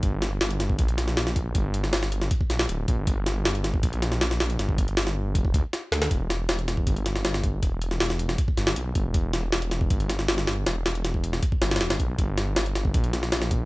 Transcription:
<<
  \new Staff \with { instrumentName = "Detuned saw bass" } { \clef bass \time 4/4 \key g \lydian \tempo 4 = 158 g,,2 bes,,2 | g,,2 r8 bes,,8 d,,8 bes,,16 g,,16 | g,,2 bes,,2 | g,,2 f,,8 d,16 r8. d,8 |
e,,2 g,,2 | e,,2 r8 g,,8 b,,8 g,,16 e,,16 | e,,2 g,,2 | e,,2 r8 g,,8 e,,16 g,,16 b,,8 |
g,,2 bes,,2 | }
  \new DrumStaff \with { instrumentName = "Drums" } \drummode { \time 4/4 <hh bd>8 <hh sn>8 <hh sn>16 hh16 <hh sn>16 bd16 <hh bd>16 hh16 <hh sn>16 sn16 <hh sn>16 sn16 <hh bd>8 | <hh bd>8 hh16 sn16 <hho sn>16 sn16 hh16 sn16 <hh bd>16 bd16 <hh sn>16 sn16 hh8 <hh bd>8 | <hh bd>8 <hh sn>8 <hh sn>16 hh16 <hh sn>16 bd16 <hh bd>16 hh16 <hh sn>16 sn16 <hh sn>16 sn16 <hh sn>16 hh16 | <hh sn>16 bd16 <hh bd>16 hh16 <hho sn>16 sn8. <hh bd>16 bd16 <hh bd>8 <hh sn>8 <hh sn>16 <hh sn>16 |
<hh bd>8 <hh sn>8 <hh sn>16 hh16 <hh sn>16 bd16 <hh bd>16 hh16 <hh sn>16 sn16 <hh sn>16 sn16 <hh bd>8 | <hh bd>8 hh16 sn16 <hho sn>16 sn16 hh16 sn16 <hh bd>16 bd16 <hh sn>16 sn16 hh8 <hh bd>8 | <hh bd>8 <hh sn>8 <hh sn>16 hh16 <hh sn>16 bd16 <hh bd>16 hh16 <hh sn>16 sn16 <hh sn>16 sn16 <hh sn>8 | <hh sn>8 <hh sn>16 hh16 <hh sn>16 bd16 hh16 sn16 <hh bd>16 bd16 <hh sn>16 <hh sn>32 <hh sn>32 <hh sn>16 <hh sn>16 <hh bd>8 |
<hh bd>8 <hh sn>8 <hh sn>16 hh16 <hh sn>16 bd16 <hh bd>16 hh16 <hh sn>16 sn16 <hh sn>16 sn16 <hh bd>8 | }
>>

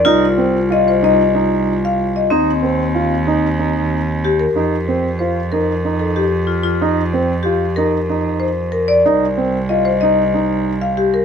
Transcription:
<<
  \new Staff \with { instrumentName = "Marimba" } { \time 7/8 \key c \dorian \tempo 4 = 93 d''4 ees''16 c''16 ees''4~ ees''16 f''8 ees''16~ | ees''16 r2 r8. g'16 bes'16~ | bes'4 c''8 bes'8. a'16 g'8 f'16 f'16~ | f'4 g'8 bes'4 c''8 bes'16 d''16~ |
d''4 ees''16 c''16 ees''4~ ees''16 f''16 g'16 bes'16 | }
  \new Staff \with { instrumentName = "Grand piano" } { \time 7/8 \key c \dorian ees'8 c'8 f'8 ees'8 ees'4 r8 | ees'8 c'8 f'8 ees'8 ees'4 r8 | ees'8 c'8 f'8 ees'8 ees'4 r8 | ees'8 c'8 f'8 ees'8 ees'4 r8 |
ees'8 c'8 f'8 ees'8 ees'4 r8 | }
  \new Staff \with { instrumentName = "Vibraphone" } { \time 7/8 \key c \dorian f'2.~ f'8 | c'2. r8 | r2. r8 | r2. r8 |
r2. r8 | }
  \new Staff \with { instrumentName = "Cello" } { \clef bass \time 7/8 \key c \dorian c,2.~ c,8 | ees,2.~ ees,8 | f,2.~ f,8~ | f,2.~ f,8 |
c,2.~ c,8 | }
>>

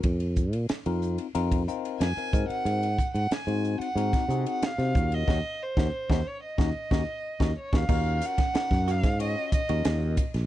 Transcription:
<<
  \new Staff \with { instrumentName = "Violin" } { \time 4/4 \key ees \dorian \tempo 4 = 92 r2. aes''8. ges''16~ | ges''8. ges''16 aes''8. ges''4 ges''16 f''8. ees''16~ | ees''8 c''4 des''16 ees''4.~ ees''16 des''16 f''16~ | f''8 ges''4 f''8 ees''8 ees''4 r8 | }
  \new Staff \with { instrumentName = "Tine electric piano" } { \time 4/4 \key ees \dorian r8 <f' aes'>16 r8 <c' ees' f' bes'>8 r16 <c' ees' f' bes'>8 <c' ees' f' bes'>8 r16 <c' ees' f' bes'>16 <c' ees' ges' bes'>8~ | <c' ees' ges' bes'>16 r16 <ges' bes'>16 r8 <c' ees' ges' c''>8 r16 <c' ees' ges' bes'>8 <c' ees' ges' aes'>8 r16 <c' ees' ges' c''>16 <des' f' ges' bes'>8 | <des' ees' ges'>16 r8 <des' ees' ges'>16 r16 <des' ees' ges'>16 r8 <des' ees' ges'>16 r16 <des' ees' ges'>16 r8 <des' ees' ges'>16 r16 <des' ees' ges'>16 | <des' f' ges' bes'>8. r16 <des' ees' ges' bes'>8. r16 <des' f' ges' des''>8 r16 <des' f' ges' bes'>8. r16 <ges' bes'>16 | }
  \new Staff \with { instrumentName = "Clean electric guitar" } { \time 4/4 \key ees \dorian r1 | r1 | r1 | ees'8 r16 des'8 r16 ges'8 r8. ges'8 r8. | }
  \new Staff \with { instrumentName = "Fretless electric bass" } { \clef bass \time 4/4 \key ees \dorian f,8. bes,16 r16 f,8 r16 f,8 r8 f,16 r16 aes,16 r16 | aes,8 r16 aes,16 r16 aes,8 r16 aes,16 r16 c16 r8 c16 ees,8 | ees,16 r8 ees,16 r16 ees,16 r8 ees,16 r16 ees,16 r8 ees,16 r16 ees,16 | ees,8 r8. ges,8 aes,8 r8 ees,16 ees,8 r16 bes,,16 | }
  \new DrumStaff \with { instrumentName = "Drums" } \drummode { \time 4/4 <bd cymr>16 cymr16 <hhp bd>16 cymr16 <cymr sn>16 cymr16 hhp16 cymr16 cymr16 <bd cymr>16 hhp16 cymr16 <cymr sn>16 cymr16 <hhp bd>16 cymr16 | cymr16 cymr16 <hhp bd>16 cymr16 <cymr sn>16 cymr16 hhp16 cymr16 cymr16 <bd cymr sn>16 hhp16 cymr16 <cymr sn>16 <cymr sn>16 <hhp bd>16 cymr16 | <bd sn>8. <bd sn>16 r16 <bd sn>8. <bd sn>8 <bd sn>8 r16 <bd sn>8 <bd sn>16 | <cymc bd>8 <hhp cymr>16 <bd cymr sn>16 <cymr sn>16 <bd sn>16 <hhp cymr sn>16 <bd cymr sn>16 cymr8 <hhp bd cymr>16 cymr16 <cymr sn>8 <hhp bd cymr>16 <cymr sn>16 | }
>>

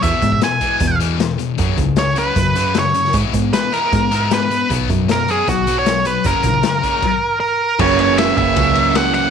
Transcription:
<<
  \new Staff \with { instrumentName = "Lead electric guitar" } { \time 4/4 \key fis \mixolydian \tempo 4 = 155 e''4 gis''4. r4. | r4 cis''8 b'4. cis''4 | r4 b'8 ais'4. b'4 | r4 ais'8 gis'8 fis'8. cis''8. b'8 |
ais'2. ais'4 | cis''8 cis''8 e''8 e''4. fis''8 fis''8 | }
  \new Staff \with { instrumentName = "Clean electric guitar" } { \clef bass \time 4/4 \key fis \mixolydian r1 | r1 | r1 | r1 |
r1 | <fis, cis e ais cis' fis'>1 | }
  \new Staff \with { instrumentName = "Distorted electric guitar" } { \clef bass \time 4/4 \key fis \mixolydian <e, b, e>8 <e, b,>8 <e, b,>8 <e, b, e>8 <e, b,>8 <e, b, e>8 <e, b,>8 <e, b,>8 | <fis, cis fis>8 <fis, cis>8 <fis, cis>8 <fis, cis fis>8 <fis, cis>8 <fis, cis fis>8 <fis, cis>8 <fis, cis>8 | <gis b e'>8 <gis b>8 <gis b>8 <gis b e'>8 <gis b>8 <gis b e'>8 <gis b>8 <gis b>8 | <b, fis b>8 <b, fis>8 <b, fis>8 <b, fis b>8 <b, fis>8 <b, fis b>8 <b, fis>8 <b, fis>8 |
<fis, cis fis>8 <fis, cis>8 <fis, cis>8 <fis, cis fis>8 r2 | <fis, cis fis ais cis' fis'>2 <fis, cis fis ais cis' fis'>2 | }
  \new Staff \with { instrumentName = "Picked electric bass" } { \clef bass \time 4/4 \key fis \mixolydian e,16 r16 gis,8 r4 e,2 | fis,8 cis,4. fis,2 | gis,16 r16 gis,8 r4 gis,2 | b,,8 fis,4. b,,2 |
fis,,16 r16 ais,,8 r2. | fis,,4. fis,,8 cis,2 | }
  \new DrumStaff \with { instrumentName = "Drums" } \drummode { \time 4/4 <hh bd>8 <hh bd>16 bd16 <hh sn>8 <hh bd>8 <hh bd>8 hh8 <hh sn>8 hh8 | <hh bd>8 <hh bd>8 <hh sn>8 hh8 <hh bd>8 hh8 <hh sn>8 hh16 sn16 | <hh bd>8 <hh bd>8 <hh sn>8 hh8 <hh bd>8 hh8 <hh sn>8 hh8 | <hh bd>8 <hh bd>8 <hh sn>8 hh8 <hh bd>8 hh8 <hh sn>8 hh8 |
<hh bd>8 <hh bd>16 bd16 <hh sn>8 <hh bd>8 <cymc bd>4 r4 | <cymc bd>8 cymr8 <cymr sn>8 <bd cymr>8 <bd cymr>8 cymr8 <cymr sn>16 sn16 cymr8 | }
>>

